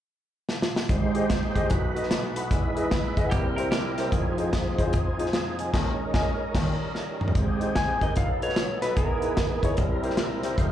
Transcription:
0.49 snare
0.62 snare
0.76 snare
0.89 upright piano G#1 G#2, tonewheel organ G#3 D#4 G4 C5, kick, closed hi-hat
1.15 upright piano G4 G#4 C5 D#5, closed hi-hat
1.30 kick, snare, closed hi-hat
1.55 upright piano G4 G#4 C5 D#5, kick, closed hi-hat
1.62 upright piano G4 G#4 C5 D#5
1.70 upright piano B1 B2, tonewheel organ A3 F#4 B4, kick, closed hi-hat
1.95 upright piano F#4 A4 B4 D#5, closed hi-hat
2.03 snare
2.10 upright piano A5, snare, closed hi-hat
2.36 upright piano F#5 B5, closed hi-hat
2.51 upright piano E2 E3, tonewheel organ G#3 E4, kick, closed hi-hat
2.76 upright piano E4 G#4 B4 D#5, closed hi-hat
2.91 kick, snare, closed hi-hat
3.17 upright piano E4 G#4 B4 D#5, kick, closed hi-hat
3.24 upright piano E4 G#4 B4 F#5
3.31 upright piano C2 C3, tonewheel organ G3 C4 A#4, clean electric guitar A#3 G4, kick, closed hi-hat
3.56 upright piano E4 G4 A#4 C5, clean electric guitar A#4, closed hi-hat
3.71 clean electric guitar A#3 G4, snare, closed hi-hat
3.97 upright piano E4 G4 A#4 C5, snare, closed hi-hat
4.04 upright piano E4 G4 A#4 C5
4.12 upright piano F1 F2, tonewheel organ F3 C4 D#4 G#4, kick, closed hi-hat
4.38 upright piano D#4 F4 G#4 C5, closed hi-hat
4.53 kick, snare, closed hi-hat
4.78 upright piano D#4 F4 G#4 C5, kick, closed hi-hat
4.85 upright piano D#4 F4 G#4 C5
4.93 kick, closed hi-hat
5.18 upright piano D#4 F4 G#4 C5, closed hi-hat
5.26 snare
5.33 upright piano C5 F5, snare, closed hi-hat
5.59 upright piano D#5 G#5, closed hi-hat
5.74 upright piano D#2 D#3, tonewheel organ G#3 C#4 A#4, kick, snare, crash
6.14 upright piano D#5 G#5, kick, snare
6.54 upright piano D#2 D#3, tonewheel organ G3, kick, snare, crash
6.95 snare
7.21 mid tom
7.28 floor tom
7.35 upright piano G#1 G#2, tonewheel organ C4 D#4 G4 G#4, kick, closed hi-hat
7.61 upright piano D#4 G4 G#4 C5, closed hi-hat
7.76 electric slide guitar G#5, kick, snare, closed hi-hat
8.01 upright piano D#4 G4 G#4 A#4, electric slide guitar D#5, kick, closed hi-hat
8.16 upright piano B1 B2, tonewheel organ F#3 B3 A4, electric slide guitar F5, kick, closed hi-hat
8.41 upright piano D#4 F#4 A4 B4, electric slide guitar C#5, closed hi-hat
8.49 snare
8.56 snare, closed hi-hat
8.82 upright piano D#4 F#4 A4 B4, electric slide guitar B4, snare, closed hi-hat
8.96 upright piano E2 E3, tonewheel organ E3 G#4, electric slide guitar A#4, kick, closed hi-hat
9.22 upright piano D#4 E4 G#4 B4, closed hi-hat
9.37 kick, snare, closed hi-hat
9.62 upright piano D#4 E4 G#4 C#5, kick, closed hi-hat
9.77 upright piano C2 C3, tonewheel organ G3 C4 E4 A#4, kick, closed hi-hat
10.03 upright piano E4 G4 A#4 C5, closed hi-hat
10.10 snare
10.17 snare, closed hi-hat
10.43 upright piano E4 G4 A#4 C5, snare, closed hi-hat
10.58 upright piano F1 F2, tonewheel organ G#3 D#4 F4 C5, kick, closed hi-hat

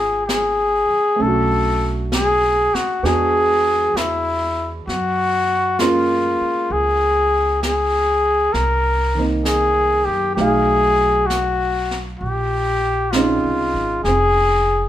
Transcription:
Already playing: upright bass G#1, grand piano G#3 A#3 C4 D#4 F4 G#4 G5, trumpet G#4
0.27 trumpet G#4, brush sweep, snare, hi-hat pedal
0.90 muted upright bass stroke
1.16 upright bass B1, grand piano A3 C#4
1.20 grand piano D4, trumpet A4, brush sweep
1.27 grand piano F#4
2.12 trumpet G#4, brush sweep, snare, hi-hat pedal
2.73 trumpet F#4, muted upright bass stroke, snare
3.03 upright bass E2, grand piano G#3 B3 D4 F#4, trumpet G#4, brush sweep, snare
3.94 upright bass E2, trumpet E4, brush sweep, snare, hi-hat pedal
4.87 upright bass F#2, trumpet F#4, brush sweep, snare
5.79 grand piano G#3 A#3 C#4 F4, trumpet F4, brush sweep, snare, hi-hat pedal
6.41 muted upright bass stroke
6.70 upright bass C#2, trumpet G#4, brush sweep
7.62 trumpet G#4, brush sweep, snare, hi-hat pedal
8.53 upright bass C2, trumpet A#4, brush sweep, snare
9.15 grand piano D#3 A#3 C4
9.19 grand piano D#4
9.45 trumpet G#4, brush sweep, snare, hi-hat pedal
10.05 upright bass F#2, trumpet G4
10.35 upright bass B1, grand piano F#3 A3 D#4, trumpet G#4, brush sweep, snare
10.41 grand piano F5
11.27 trumpet F#4, brush sweep, snare, hi-hat pedal
11.91 snare
12.19 upright bass A#1, trumpet G4, brush sweep
13.12 grand piano G#3 C4 C#4 D#4, trumpet F4, brush sweep, snare, hi-hat pedal
13.43 upright bass C2
13.74 upright bass G#1
14.04 upright bass F1, grand piano C4, trumpet G#4, brush sweep, snare

